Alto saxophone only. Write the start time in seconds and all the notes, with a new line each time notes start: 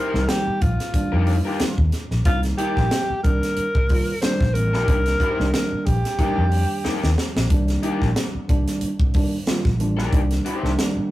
Already playing: A#4
0.29 G4
0.61 F4
2.26 F4
2.58 G4
3.23 A#4
4.22 C5
4.54 A#4
5.53 A#4
5.86 G4